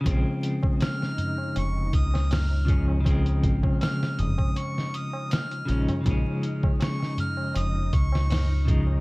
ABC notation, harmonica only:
X:1
M:4/4
L:1/16
Q:"Swing 16ths" 1/4=80
K:Bbm
V:1 name="Harmonica"
z4 f'4 d'2 e'2 f'3 z | z4 f'2 e'2 d'2 e'2 f'3 z | z4 d'2 f'2 e'2 d'4 z2 |]